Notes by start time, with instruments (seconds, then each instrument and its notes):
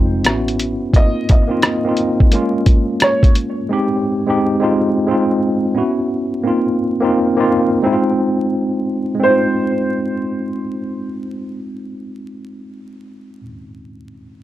Already playing: fingered electric bass F1, tine electric piano G#3 C4 D#4 F4, upright piano C5
0.25 fingered electric bass A1, tine electric piano B3 C#4 E4, cross-stick, closed hi-hat
0.29 tine electric piano F#4
0.48 closed hi-hat
0.60 closed hi-hat
0.93 tine electric piano A#3 C4 D#4, upright piano D#5, kick, closed hi-hat
0.97 tine electric piano F4
1.29 upright piano D#5, kick, closed hi-hat
1.47 tine electric piano A#3 C4 D#4 F4
1.62 cross-stick, closed hi-hat
1.85 tine electric piano A#3 C4 D#4 F4
1.97 closed hi-hat
2.20 kick
2.31 tine electric piano G#3 A#3 C#4 F4, closed hi-hat
2.66 kick, closed hi-hat
3.00 upright piano C#5, cross-stick, closed hi-hat
3.23 kick, closed hi-hat
3.35 closed hi-hat
3.69 tine electric piano G#3 C4 D#4 G4
4.26 tine electric piano G#3 C4 D#4 G4
4.60 tine electric piano G#3 C4 D#4 F4
5.07 tine electric piano G#3 C4 D#4 F4
5.75 tine electric piano B3 C#4 E4 F#4
6.43 tine electric piano A#3 C4 D#4 F4
7.01 tine electric piano A#3 C4 D#4 F4
7.37 tine electric piano A#3 C4 D#4 F4
7.82 tine electric piano G#3 C4 D#4 E4
7.93 tine electric piano F4
9.15 tine electric piano G#3
9.20 tine electric piano C4, upright piano C5
9.25 tine electric piano D#4
9.30 tine electric piano F4